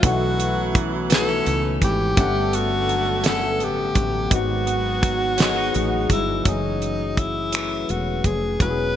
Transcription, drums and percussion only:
0.03 kick loud
0.03 closed hi-hat medium
0.40 closed hi-hat medium
0.75 kick loud
0.75 closed hi-hat soft
1.10 snare loud
1.10 closed hi-hat medium
1.46 closed hi-hat soft
1.82 kick medium
1.82 closed hi-hat soft
2.17 kick loud
2.17 closed hi-hat medium
2.53 closed hi-hat soft
2.89 closed hi-hat soft
3.24 snare loud
3.24 closed hi-hat medium
3.60 closed hi-hat soft
3.95 kick medium
3.95 closed hi-hat soft
4.31 kick loud
4.31 closed hi-hat medium
4.67 closed hi-hat medium
5.03 kick loud
5.03 closed hi-hat soft
5.38 snare loud
5.38 closed hi-hat medium
5.74 closed hi-hat soft
6.10 kick medium
6.10 closed hi-hat medium
6.45 kick loud
6.45 closed hi-hat medium
6.82 closed hi-hat soft
7.17 kick medium
7.17 closed hi-hat soft
7.53 finger snap loud
7.53 closed hi-hat medium
7.89 closed hi-hat soft
8.24 kick medium
8.24 closed hi-hat soft
8.60 kick loud
8.60 closed hi-hat medium

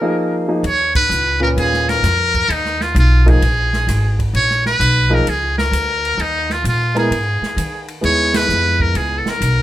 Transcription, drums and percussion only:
0.64 ride medium
0.95 kick medium
0.95 ride medium
1.11 hi-hat pedal medium
1.58 ride medium
1.73 snare soft
1.89 snare soft
1.89 ride soft
2.04 snare soft
2.04 hi-hat pedal medium
2.04 ride medium
2.34 kick soft
2.34 ride soft
2.50 ride medium
2.65 snare soft
2.81 snare soft
2.96 hi-hat pedal soft
2.96 ride medium
3.27 kick medium
3.27 ride soft
3.42 ride medium
3.73 snare soft
3.88 snare soft
3.88 hi-hat pedal medium
3.88 ride medium
4.19 kick medium
4.19 ride soft
4.35 ride medium
4.50 snare soft
4.66 snare soft
4.81 hi-hat pedal medium
4.81 ride medium
5.27 ride medium
5.58 snare medium
5.73 hi-hat pedal soft
5.73 ride medium
6.05 ride soft
6.20 ride medium
6.50 snare soft
6.65 hi-hat pedal medium
6.65 ride medium
6.96 ride soft
7.12 ride medium
7.43 snare soft
7.58 hi-hat pedal medium
7.58 ride medium
7.88 ride soft
8.04 ride medium
8.34 snare medium
8.34 ride medium
8.50 hi-hat pedal medium
8.80 kick medium
8.95 ride medium
9.26 snare soft
9.42 hi-hat pedal medium
9.42 ride medium

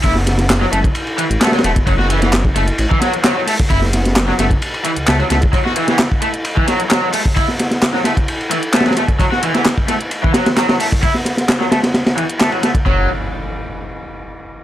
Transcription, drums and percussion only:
0.03 kick loud
0.03 closed hi-hat soft
0.03 ride medium
0.15 snare soft
0.27 snare soft
0.27 closed hi-hat medium
0.27 ride medium
0.38 snare soft
0.38 closed hi-hat soft
0.50 snare loud
0.50 clap loud
0.50 closed hi-hat soft
0.50 ride medium
0.61 snare medium
0.73 closed hi-hat medium
0.73 ride medium
0.84 kick loud
0.84 closed hi-hat soft
0.95 closed hi-hat soft
0.95 ride medium
1.07 ride soft
1.18 closed hi-hat medium
1.18 ride medium
1.31 closed hi-hat soft
1.41 snare medium
1.41 clap loud
1.41 closed hi-hat soft
1.41 ride medium
1.47 snare medium
1.47 ride medium
1.52 snare medium
1.52 ride medium
1.58 snare medium
1.58 ride medium
1.64 snare medium
1.64 closed hi-hat medium
1.64 ride medium
1.76 kick medium
1.76 closed hi-hat soft
1.87 kick loud
1.87 closed hi-hat soft
1.87 ride medium
1.99 snare soft
2.10 closed hi-hat medium
2.10 ride medium
2.22 snare soft
2.22 closed hi-hat soft
2.33 snare loud
2.33 clap loud
2.33 closed hi-hat soft
2.33 ride medium
2.45 kick loud
2.56 closed hi-hat medium
2.56 ride medium
2.68 closed hi-hat soft
2.78 closed hi-hat soft
2.78 ride medium
2.91 kick loud
3.01 snare medium
3.01 closed hi-hat medium
3.01 ride medium
3.14 closed hi-hat soft
3.24 snare loud
3.24 clap loud
3.24 closed hi-hat soft
3.24 ride medium
3.48 closed hi-hat medium
3.48 open hi-hat medium
3.59 kick loud
3.59 closed hi-hat soft
3.70 kick loud
3.70 closed hi-hat soft
3.70 ride medium
3.82 snare soft
3.93 snare soft
3.93 closed hi-hat medium
3.93 ride medium
4.05 snare soft
4.05 closed hi-hat soft
4.16 snare loud
4.16 clap loud
4.16 closed hi-hat soft
4.16 ride medium
4.28 snare medium
4.39 snare medium
4.39 closed hi-hat medium
4.39 ride medium
4.51 kick medium
4.51 closed hi-hat soft
4.62 closed hi-hat soft
4.62 ride medium
4.74 ride soft
4.85 closed hi-hat medium
4.85 ride medium
4.96 closed hi-hat soft
5.07 snare loud
5.07 clap loud
5.07 closed hi-hat soft
5.07 ride medium
5.20 ride soft
5.30 snare medium
5.30 closed hi-hat medium
5.30 ride medium
5.42 kick loud
5.42 closed hi-hat soft
5.53 kick loud
5.53 closed hi-hat soft
5.53 ride medium
5.66 snare soft
5.76 closed hi-hat medium
5.76 ride medium
5.88 snare soft
5.88 closed hi-hat soft
5.99 snare loud
5.99 clap loud
5.99 closed hi-hat soft
5.99 ride medium
6.12 kick medium
6.22 closed hi-hat medium
6.22 ride medium
6.34 closed hi-hat soft
6.45 closed hi-hat soft
6.45 ride medium
6.57 kick medium
6.68 snare soft
6.68 closed hi-hat medium
6.68 ride medium
6.80 closed hi-hat soft
6.91 snare loud
6.91 clap loud
6.91 closed hi-hat soft
6.91 ride medium
7.13 closed hi-hat medium
7.13 open hi-hat medium
7.26 kick loud
7.26 closed hi-hat soft
7.37 kick loud
7.37 closed hi-hat soft
7.37 ride medium
7.48 snare soft
7.60 snare soft
7.60 closed hi-hat medium
7.60 ride medium
7.71 snare soft
7.71 closed hi-hat soft
7.82 snare loud
7.82 clap loud
7.82 closed hi-hat soft
7.82 ride medium
7.94 snare soft
8.04 snare medium
8.04 closed hi-hat medium
8.04 ride medium
8.17 kick medium
8.17 closed hi-hat soft
8.28 closed hi-hat soft
8.28 ride medium
8.41 ride soft
8.51 closed hi-hat medium
8.51 ride medium
8.63 closed hi-hat soft
8.74 snare loud
8.74 clap loud
8.74 closed hi-hat soft
8.74 ride medium
8.80 snare loud
8.80 ride medium
8.86 snare medium
8.86 ride medium
8.91 snare medium
8.91 ride medium
8.97 snare medium
8.97 closed hi-hat medium
8.97 ride medium
9.08 kick medium
9.08 closed hi-hat soft
9.19 kick loud
9.19 closed hi-hat soft
9.19 ride medium
9.32 snare soft
9.43 closed hi-hat medium
9.43 ride medium
9.55 snare soft
9.55 closed hi-hat soft
9.65 snare loud
9.65 clap loud
9.65 closed hi-hat soft
9.65 ride medium
9.78 kick medium
9.88 snare soft
9.88 closed hi-hat medium
9.88 ride medium
10.01 closed hi-hat soft
10.11 closed hi-hat soft
10.11 ride medium
10.24 kick loud
10.34 snare loud
10.34 closed hi-hat medium
10.34 ride medium
10.46 snare loud
10.46 closed hi-hat soft
10.46 ride medium
10.57 snare loud
10.57 clap medium
10.57 closed hi-hat soft
10.57 ride medium
10.69 snare loud
10.69 ride medium
10.80 closed hi-hat medium
10.80 open hi-hat medium
10.92 kick loud
10.92 closed hi-hat soft
11.03 kick loud
11.03 closed hi-hat soft
11.03 ride medium
11.14 snare soft
11.25 snare soft
11.25 closed hi-hat medium
11.25 ride medium
11.37 snare soft
11.37 closed hi-hat soft
11.49 snare loud
11.49 clap loud
11.49 closed hi-hat soft
11.49 ride medium
11.61 snare medium
11.72 snare loud
11.72 closed hi-hat medium
11.72 ride medium
11.83 snare medium
11.83 closed hi-hat soft
11.83 ride medium
11.94 snare loud
11.94 closed hi-hat soft
11.94 ride medium
12.06 snare medium
12.06 ride medium
12.18 closed hi-hat medium
12.18 ride medium
12.30 closed hi-hat soft
12.40 snare loud
12.40 clap medium
12.40 closed hi-hat soft
12.40 ride medium
12.52 ride soft
12.63 snare medium
12.63 closed hi-hat medium
12.63 ride medium
12.75 kick loud
12.75 closed hi-hat soft
12.86 kick loud

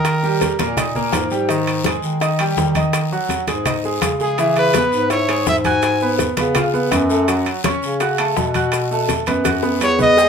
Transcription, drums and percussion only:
0.05 high bongo medium
0.05 high conga soft
0.05 high timbale medium
0.05 long guiro medium
0.05 maracas medium
0.23 high bongo soft
0.23 high conga soft
0.23 maracas soft
0.41 high bongo medium
0.41 high conga medium
0.41 high timbale medium
0.41 short guiro medium
0.41 maracas medium
0.59 high bongo soft
0.59 high conga medium
0.59 high timbale medium
0.59 short guiro medium
0.59 maracas soft
0.77 high bongo medium
0.77 high conga soft
0.77 low conga medium
0.77 high timbale loud
0.77 long guiro medium
0.77 maracas medium
0.95 high bongo soft
0.95 high conga soft
0.95 low conga medium
0.95 maracas soft
1.12 high bongo medium
1.12 low bongo medium
1.12 high conga medium
1.12 high timbale medium
1.12 low timbale medium
1.12 short guiro medium
1.12 maracas medium
1.30 high conga soft
1.30 short guiro medium
1.30 maracas soft
1.49 high bongo medium
1.49 high conga soft
1.49 high timbale medium
1.49 long guiro medium
1.49 maracas medium
1.67 high conga soft
1.67 high timbale medium
1.67 maracas soft
1.84 high bongo medium
1.84 high conga loud
1.84 high timbale medium
1.84 short guiro medium
1.84 maracas medium
2.02 short guiro medium
2.02 maracas soft
2.20 high bongo medium
2.20 high conga soft
2.20 high timbale medium
2.20 long guiro medium
2.20 maracas medium
2.39 high conga soft
2.39 high timbale medium
2.39 maracas soft
2.57 high bongo medium
2.57 low bongo medium
2.57 high conga medium
2.57 short guiro medium
2.57 maracas medium
2.75 high conga medium
2.75 high timbale medium
2.75 short guiro medium
2.75 maracas soft
2.93 high bongo medium
2.93 high conga soft
2.93 high timbale medium
2.93 long guiro medium
2.93 maracas medium
3.12 high bongo soft
3.12 high conga soft
3.12 maracas soft
3.29 high bongo medium
3.29 high conga medium
3.29 high timbale medium
3.29 short guiro medium
3.29 maracas medium
3.47 high bongo soft
3.47 high conga medium
3.47 high timbale medium
3.47 short guiro medium
3.47 maracas soft
3.65 high bongo medium
3.65 high conga soft
3.65 low conga medium
3.65 high timbale medium
3.65 long guiro medium
3.65 maracas medium
3.84 high bongo soft
3.84 high conga soft
3.84 maracas soft
4.02 high bongo medium
4.02 low bongo medium
4.02 high conga medium
4.02 high timbale medium
4.02 short guiro medium
4.02 maracas medium
4.20 high conga soft
4.20 short guiro medium
4.20 maracas soft
4.38 high bongo medium
4.38 high conga soft
4.38 high timbale medium
4.38 long guiro medium
4.38 maracas medium
4.56 high conga soft
4.56 high timbale medium
4.56 maracas soft
4.74 high bongo medium
4.74 high conga loud
4.74 high timbale medium
4.74 short guiro medium
4.74 maracas medium
4.92 short guiro medium
4.92 maracas soft
5.10 high bongo medium
5.10 high conga soft
5.10 high timbale medium
5.10 long guiro medium
5.10 maracas medium
5.28 high conga soft
5.28 high timbale medium
5.28 maracas soft
5.46 high bongo medium
5.46 low bongo medium
5.46 high conga medium
5.46 short guiro medium
5.46 maracas medium
5.64 high conga medium
5.64 high timbale medium
5.64 short guiro medium
5.64 maracas soft
5.82 high bongo medium
5.82 high timbale medium
5.82 long guiro medium
5.82 maracas medium
6.01 high bongo soft
6.01 high conga soft
6.01 maracas soft
6.19 high bongo medium
6.19 high conga medium
6.19 high timbale medium
6.19 short guiro medium
6.19 maracas medium
6.37 high bongo soft
6.37 high conga medium
6.37 high timbale medium
6.37 short guiro medium
6.37 maracas soft
6.55 high bongo medium
6.55 high conga soft
6.55 low conga medium
6.55 high timbale loud
6.55 long guiro medium
6.55 maracas medium
6.74 high bongo soft
6.74 high conga soft
6.74 maracas soft
6.92 high bongo medium
6.92 low bongo medium
6.92 high conga medium
6.92 high timbale medium
6.92 short guiro medium
6.92 maracas medium
7.10 high conga soft
7.10 short guiro medium
7.10 maracas soft
7.28 high bongo medium
7.28 high conga soft
7.28 high timbale medium
7.28 long guiro medium
7.28 maracas medium
7.46 high conga soft
7.46 high timbale medium
7.46 maracas soft
7.64 high bongo medium
7.64 high conga loud
7.64 high timbale medium
7.64 short guiro medium
7.64 maracas medium
7.82 short guiro medium
7.82 maracas soft
8.00 high bongo medium
8.00 high conga soft
8.00 high timbale medium
8.00 long guiro medium
8.00 maracas medium
8.18 high conga soft
8.18 high timbale loud
8.18 maracas soft
8.37 high bongo medium
8.37 low bongo medium
8.37 high conga medium
8.37 short guiro medium
8.37 maracas medium
8.54 high conga medium
8.54 high timbale medium
8.54 short guiro medium
8.54 maracas soft
8.72 high bongo medium
8.72 high conga soft
8.72 high timbale medium
8.72 long guiro medium
8.72 maracas medium
8.91 high bongo soft
8.91 high conga soft
8.91 maracas soft
9.09 high bongo medium
9.09 high conga medium
9.09 high timbale medium
9.09 short guiro medium
9.09 maracas medium
9.26 high bongo soft
9.26 high conga medium
9.26 high timbale medium
9.26 short guiro medium
9.26 maracas soft
9.44 high bongo loud
9.44 high conga medium
9.44 high timbale medium
9.44 long guiro medium
9.44 maracas medium
9.63 high bongo loud
9.63 maracas soft
9.80 high timbale medium
9.80 low timbale medium
9.80 short guiro medium
9.80 maracas medium
9.99 low bongo medium
9.99 low conga loud
9.99 short guiro medium
9.99 maracas soft
10.16 cowbell loud
10.16 high conga soft
10.16 low agogo medium
10.16 long guiro medium
10.16 maracas medium

